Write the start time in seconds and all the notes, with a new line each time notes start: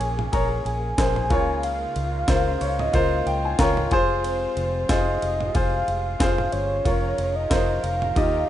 Already playing: A#2 A#3 C#4 G#4 A#4 C#5 G#5
0.00 A#1, ride
0.19 floor tom
0.32 A#1 G#4 A#4 C#5 A#5, kick, ride
0.65 A#1 G#5, ride
0.98 A#1 G#4 A#4 C5, kick, snare, ride
1.16 floor tom
1.30 C#2 C#3 G#3 D#4 F4 A#4 C#5, kick, ride
1.63 F5, ride
1.96 C#2, ride
2.28 C#2 F4 A#4 C5, kick, snare, ride
2.61 C#2 C#5, ride
2.79 D#5, floor tom
2.93 C#2 F4 A#4 C5 F5, kick, ride
3.26 C#2 G5, ride
3.45 G#5
3.59 C#2 F4 A#4 C#5 A#5, kick, snare, ride
3.77 floor tom
3.91 F1 C3 G#3 F4 G#4 C5 C6, kick, ride
4.24 C5, ride
4.57 F1, ride
4.89 F1 F4 G#4 C5 D#5, kick, snare, ride
5.22 F1, ride
5.41 floor tom
5.54 F1 F4 G#4 C5 F5, kick, ride
5.88 F1, ride
6.06 F5
6.20 F1 F4 G#4 C5, kick, snare, ride
6.38 floor tom
6.52 G1 C#5, ride
6.85 F1 F3 C#4 D#4 F4 G#4 A#4 C#5, kick, ride
7.18 F1, ride
7.36 D#5
7.50 F1 F4 A#4 C5, kick, snare, ride
7.83 F1 F5, ride
8.02 floor tom
8.15 D#2 D#3 F4 G4 D#5, kick, ride